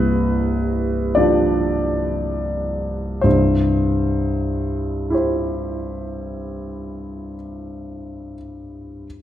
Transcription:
Already playing: C1 C2 B4
1.15 F3 D4 G4 D5
3.21 C2 G2 C5
5.10 E4 G4
5.14 C5

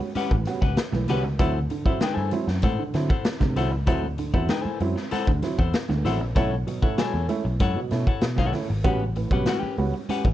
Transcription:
0.00 C#4 F#4, muted clean electric guitar stroke
0.15 C#4 F#4 G4 B4 F#5, muted picked electric bass stroke, closed hi-hat, high conga
0.31 A1 A2 E3, kick
0.45 G3 B3 C#4 F#4, muted clean electric guitar stroke, snare, closed hi-hat
0.62 C#2 C#4 G4 B4 F#5, kick
0.77 C#4 F#4, snare, closed hi-hat
0.92 B1 A2 E3, muted clean electric guitar stroke, snare, muted conga, high conga, low conga
1.08 C2 G3 B3 C#4 F#4 G4 B4 F#5, snare, closed hi-hat, low conga
1.24 C#2, muted clean electric guitar stroke
1.39 D2 F#3 C4 E4 A4 C5 F#5, kick, closed hi-hat, muted conga
1.70 D3, muted clean electric guitar stroke, closed hi-hat
1.85 F#3 C4 E4 A4 C5 F#5, muted picked electric bass stroke, kick
2.00 D3 D#4 G#4 B4 G5, snare, closed hi-hat, high conga
2.14 G2 E4 A4 C5 G#5
2.18 muted conga
2.31 F#3 C4 E4, muted clean electric guitar stroke, closed hi-hat, high conga
2.48 F#2 C4 E4, muted clean electric guitar stroke, snare
2.62 A2 C4 E4 A4 C5 F#5, kick, closed hi-hat, muted conga, high conga
2.79 D3
2.94 D3 F#3 C4 E4, muted clean electric guitar stroke, snare, closed hi-hat
3.09 E4 A4 C5 F#5, kick
3.25 C4 E4, snare, closed hi-hat, muted conga
3.40 C3 D3, muted clean electric guitar stroke, kick, snare, muted conga, high conga, low conga
3.56 C2 F#3 C4 E4 A4 C5 F#5, snare, closed hi-hat, low conga
3.71 C#2, muted clean electric guitar stroke
3.87 D2 F#3 C4 E4 A4 C5 F#5, kick, closed hi-hat, muted conga
4.03 muted conga
4.18 D3, muted clean electric guitar stroke, closed hi-hat
4.34 E2 F#3 C4 E4 A4 C5 F#5, kick
4.49 D3 D#4 G#4 B4 G5, snare, closed hi-hat, high conga
4.61 E4 A4 C5 G#5
4.65 muted picked electric bass stroke, muted conga
4.80 F#2 F#3 C4 E4, muted clean electric guitar stroke, closed hi-hat, high conga
4.96 C4 E4, muted clean electric guitar stroke, snare
5.11 C4 E4 A4 C5 F#5, muted picked electric bass stroke, closed hi-hat, high conga
5.27 D2 D3, kick
5.42 F#3 C4 E4, muted clean electric guitar stroke, snare, closed hi-hat
5.58 E2 E4 A4 C5 F#5, kick
5.74 C4 E4, snare, closed hi-hat
5.89 D2 D3, muted clean electric guitar stroke, snare, high conga, low conga
6.05 A1 F#3 C4 E4 A4 C5 F#5, snare, closed hi-hat, low conga
6.20 A#1, muted clean electric guitar stroke
6.35 B1 A3 C#4 E4 A4 C#5 F#5, kick, closed hi-hat, muted conga
6.51 muted conga
6.67 B2 F#3, muted clean electric guitar stroke, closed hi-hat
6.82 A3 C#4 E4 A4 C#5 F#5, muted picked electric bass stroke, kick
6.97 B2 F#3 E4 A4 C#5 G#5, snare, closed hi-hat, muted conga, high conga
7.14 E2, muted conga
7.28 A3 C#4 E4, muted clean electric guitar stroke, closed hi-hat, high conga
7.45 B1 C#4 E4, muted clean electric guitar stroke
7.60 F#2 C#4 E4 A4 C#5 F#5, kick, closed hi-hat, muted conga, high conga
7.76 B2 F#3
7.91 B2 A3 C#4 E4, muted clean electric guitar stroke, snare, closed hi-hat
8.07 E4 A4 C#5 F#5, kick
8.21 B2 C#4 E4, muted clean electric guitar stroke, snare, closed hi-hat
8.36 B1 B2 F#3 E4 A4 C#5 F#5, kick, snare, high conga, low conga
8.53 A3 C#4 E4, muted clean electric guitar stroke, snare, open hi-hat, low conga
8.70 G#1, muted clean electric guitar stroke
8.84 A1 G3 B3 C#4 F#4 G4 B4 F#5, kick, closed hi-hat, muted conga
9.00 muted conga
9.16 A2 E3, muted clean electric guitar stroke, closed hi-hat
9.31 B1 G3 B3 C#4 F#4 G4 B4 F#5, kick
9.46 A2 E3 C4 F#4 A#4 F#5, snare, closed hi-hat, high conga
9.59 C#4 G4 B4 G5, muted picked electric bass stroke
9.63 muted conga
9.78 C#2 G3 B3 C#4 F#4, muted clean electric guitar stroke, open hi-hat, high conga
9.94 C#4 F#4, muted clean electric guitar stroke
10.09 C#4 F#4 G4 B4 F#5, muted picked electric bass stroke, closed hi-hat, muted conga, high conga
10.25 A1 A2 E3, kick, muted conga

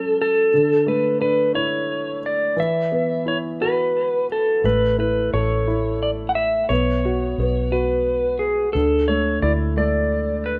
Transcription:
Already playing: F#3 C#4 A4
0.22 A4
0.54 D3
0.87 A3 B4
1.20 D4 B4
1.54 E4 C#5
2.26 D5
2.56 E3 E5
2.92 B3
3.26 E4 C#5
3.61 F#4 B4
4.32 A4
4.64 A1 A3 B4
4.98 E4 B4
5.33 A1 A4 C#5
5.68 E4
6.03 D5
6.29 F#5
6.35 E5
6.69 B1 B3 C#5
7.05 F#4
7.38 B1 B3
7.72 F#4 B4
8.39 G#4
8.73 D2 D3 A4
9.08 A3 C#5
9.42 D2 E4 D5
9.77 A3 D5
10.46 B4

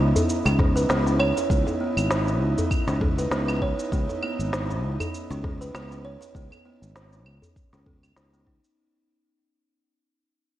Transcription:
Already playing: B3 C#4 D#4 E4
0.00 C#2
0.16 djembe bass, cabasa
0.29 cabasa
0.45 C#2 C#4, djembe slap, cabasa, claves
0.59 B3, kick, snare, djembe bass
0.76 B4, cabasa
0.89 C#2 B3, snare, cabasa
1.06 C#4, cabasa
1.19 C#5, claves
1.37 djembe slap, cabasa
1.50 C#2 B3, kick, cabasa
1.66 djembe tone, cabasa
1.80 B3
1.97 G#1, cabasa, claves
2.10 snare, cabasa
2.27 C#4, cabasa
2.40 C#2
2.58 djembe bass, cabasa
2.71 kick, cabasa, claves
2.88 C#2 C#4, snare, djembe slap, cabasa
3.01 B3, kick, djembe bass
3.19 B4, cabasa
3.31 C#2 B3, snare, cabasa
3.48 C#4, cabasa, claves
3.62 C#5, kick
3.79 cabasa
3.92 C#2 B3, kick, cabasa
4.09 djembe tone, cabasa
4.23 B3, djembe tone, claves
4.39 G#1, cabasa
4.53 snare, cabasa
4.70 C#4, djembe tone, cabasa
4.83 C#2
5.00 djembe bass, cabasa, claves
5.14 cabasa
5.30 C#2 C#4, djembe slap, cabasa
5.44 B3, kick, snare, djembe bass
5.61 B4, cabasa
5.74 C#2 B3, snare, cabasa, claves
5.91 C#4, cabasa
6.05 C#5
6.21 djembe slap, cabasa
6.35 C#2 B3, kick, cabasa
6.51 djembe tone, cabasa, claves
6.65 B3
6.82 G#1, cabasa
6.96 snare, cabasa
7.12 C#4, cabasa
7.26 C#2, claves
7.42 djembe bass, cabasa
7.56 kick, cabasa
7.73 C#2 C#4, snare, djembe slap, cabasa
7.86 B3, kick, djembe bass
8.03 C#4, cabasa, claves
8.16 C#2 D#4, snare, cabasa
8.34 B3, cabasa
8.47 D#4, kick
8.64 cabasa

